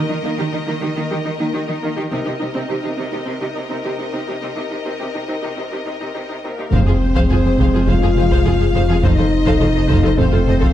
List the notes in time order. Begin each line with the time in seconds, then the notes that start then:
Already playing: A#4 D#5
0.10 D#3 D#4
0.24 D#3 A#3 D#4
0.39 D#3 D#4 G4
0.53 D#3 D#4
0.67 D#3 A#3 D#4
0.82 D#3 D#4 G4
0.96 D#3 A#3 D#4
1.11 D#3 D#4 G4
1.25 D#3 D#4
1.39 D#3 A#3 D#4
1.54 D#3 D#4 G4
1.68 D#3 D#4
1.83 D#3 A#3 D#4
1.97 D#3 D#4 G4
2.11 C3 C4 D#4 A#4 D#5, taiko
2.25 C3 D#4 G4
2.40 C3 D#4
2.55 C3 C4 D#4
2.69 C3 D#4 G4
2.83 C3 D#4
2.97 C3 C4 D#4
3.12 C3 D#4 G4
3.25 C3 C4 D#4
3.41 C3 D#4 G4
3.55 C3 D#4
3.69 C3 C4 D#4
3.84 C3 D#4 G4
3.98 C3 D#4
4.12 C3 C4 D#4
4.27 C3 D#4 G4
4.41 C3 C4 D#4
4.56 C3 D#4 G4
4.71 C3 D#4
4.85 C3 C4 D#4
4.99 C3 D#4 G4
5.14 C3 D#4
5.28 C3 C4 D#4
5.42 C3 D#4 G4
5.57 C3 C4 D#4
5.71 C3 D#4 G4
5.86 C3 D#4
6.00 C3 C4 D#4
6.14 C3 D#4 G4
6.29 C3 D#4
6.44 C3 A#3 C4 D#4 A#4
6.58 C3 D#4 G4
6.72 F1 F2 C3 G#3 C4 G#4 C5 F5, taiko
6.87 F2 F4 G#4
7.16 F2 G#4 C5 F5, taiko
7.30 F1 F2 F4 G#4
7.45 F2 G#4 C5
7.59 F1 F2 G#4 C5 F5, taiko
7.73 F2 F4 G#4
7.87 F1 F2 F4 G#4 C5 F5, taiko
8.02 F2 F4 G#4
8.16 F1 F2 G#4 C5
8.31 F2 G#4 C5 F5, taiko
8.45 F1 F2 F4 G#4
8.60 F2 G#4 C5
8.74 F1 F2 G#4 C5 F5
8.89 F2 F4 G#4
9.02 F1 F2 A3 D#4 A4 C5 D#5 F5, taiko
9.17 F2 F4 A4 C5
9.46 F2 A4 C5 F5, taiko
9.61 F1 F2 F4 A4 C5
9.75 F2 A4 D#5
9.89 F1 F2 A4 C5 F5, taiko
10.03 F2 F4 A4 C5
10.18 F1 F2 C4 A4 C5 F5, taiko
10.32 F2 F4 A4 C5
10.47 F1 F2 A4 D#5
10.61 F2 A4 C5 F5, taiko